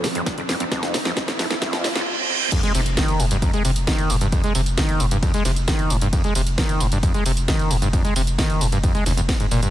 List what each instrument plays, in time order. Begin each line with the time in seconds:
Already playing: synth drone F3 C4, riser
0.04 acid bass F3, snare, open hi-hat
0.15 acid bass F2, closed hi-hat
0.26 kick, snare, closed hi-hat
0.38 acid bass F2, closed hi-hat
0.49 acid bass F2, snare, open hi-hat
0.60 acid bass F2, closed hi-hat
0.72 acid bass F2, kick, snare, closed hi-hat
0.83 snare, closed hi-hat
0.94 acid bass F3, snare, open hi-hat
1.05 acid bass F2, snare, closed hi-hat
1.17 kick, snare, closed hi-hat
1.28 acid bass F2, snare, closed hi-hat
1.39 acid bass F2, snare, open hi-hat
1.50 acid bass F2, snare, closed hi-hat
1.62 acid bass F2, kick, snare, closed hi-hat, reverse cymbal
1.73 snare, closed hi-hat
1.84 acid bass F3, snare, open hi-hat
1.96 acid bass F2, snare, closed hi-hat
2.52 acid bass F2, kick, closed hi-hat, crash, ride, tambourine, impact
2.63 acid bass G#3, closed hi-hat, tambourine
2.75 sub bass F1, acid bass C3, open hi-hat, tambourine
2.86 sub bass F1, closed hi-hat, tambourine
2.97 acid bass D#3, kick, snare, closed hi-hat, ride, tambourine
3.08 closed hi-hat, tambourine
3.20 sub bass F1, acid bass G#2, open hi-hat, tambourine
3.31 sub bass F1, acid bass G2, closed hi-hat, tambourine
3.42 acid bass F2, kick, closed hi-hat, ride, tambourine
3.54 acid bass G#3, closed hi-hat, tambourine
3.65 sub bass F1, acid bass C3, open hi-hat, tambourine
3.76 sub bass F1, closed hi-hat, tambourine
3.87 acid bass D#3, kick, snare, closed hi-hat, ride, tambourine
3.99 closed hi-hat, tambourine
4.10 sub bass F1, acid bass G#2, open hi-hat, tambourine
4.21 sub bass F1, acid bass G2, closed hi-hat, tambourine
4.32 acid bass F2, kick, closed hi-hat, ride, tambourine
4.44 acid bass G#3, closed hi-hat, tambourine
4.55 sub bass F1, acid bass C3, open hi-hat, tambourine
4.66 sub bass F1, closed hi-hat, tambourine
4.78 acid bass D#3, kick, snare, closed hi-hat, ride, tambourine
4.89 closed hi-hat, tambourine
5.00 sub bass F1, acid bass G#2, open hi-hat, tambourine
5.11 sub bass F1, acid bass G2, closed hi-hat, tambourine
5.23 acid bass F2, kick, closed hi-hat, ride, tambourine
5.34 acid bass G#3, closed hi-hat, tambourine
5.45 sub bass F1, acid bass C3, snare, open hi-hat, tambourine
5.56 sub bass F1, closed hi-hat, tambourine
5.68 acid bass D#3, kick, snare, closed hi-hat, ride, tambourine
5.79 closed hi-hat, tambourine
5.90 sub bass F1, acid bass G#2, open hi-hat, tambourine
6.01 sub bass F1, acid bass G2, closed hi-hat, tambourine
6.13 acid bass F2, kick, closed hi-hat, ride, tambourine
6.24 acid bass G#3, closed hi-hat, tambourine
6.35 sub bass F1, acid bass C3, open hi-hat, tambourine
6.47 sub bass F1, closed hi-hat, tambourine
6.58 acid bass D#3, kick, snare, closed hi-hat, ride, tambourine
6.69 closed hi-hat, tambourine
6.80 sub bass F1, acid bass G#2, open hi-hat, tambourine
6.92 sub bass F1, acid bass G2, closed hi-hat, tambourine
7.03 acid bass F2, kick, closed hi-hat, ride, tambourine
7.14 acid bass G#3, closed hi-hat, tambourine
7.26 sub bass F1, acid bass C3, open hi-hat, tambourine
7.37 sub bass F1, closed hi-hat, tambourine
7.48 acid bass D#3, kick, snare, closed hi-hat, ride, tambourine
7.59 closed hi-hat, tambourine
7.71 sub bass F1, acid bass G#2, open hi-hat, tambourine
7.82 sub bass F1, acid bass G2, closed hi-hat, tambourine
7.93 acid bass F2, kick, closed hi-hat, ride, tambourine
8.05 acid bass G#3, closed hi-hat, tambourine
8.16 sub bass F1, acid bass C3, open hi-hat, tambourine
8.27 sub bass F1, closed hi-hat, tambourine
8.38 acid bass D#3, kick, snare, closed hi-hat, ride, tambourine
8.50 closed hi-hat, tambourine
8.61 sub bass F1, acid bass G#2, open hi-hat, tambourine
8.72 sub bass F1, acid bass G2, closed hi-hat, tambourine
8.83 acid bass F2, kick, closed hi-hat, ride, tambourine
8.95 acid bass G#3, closed hi-hat, tambourine
9.06 sub bass F1, acid bass D#2, snare, open hi-hat, tambourine
9.17 sub bass F1, acid bass F2, closed hi-hat, tambourine
9.29 kick, snare, closed hi-hat, ride, tambourine
9.40 acid bass G#2, closed hi-hat, tambourine
9.51 sub bass F1, acid bass A#2, open hi-hat, tambourine
9.63 sub bass F1, acid bass G2, closed hi-hat, tambourine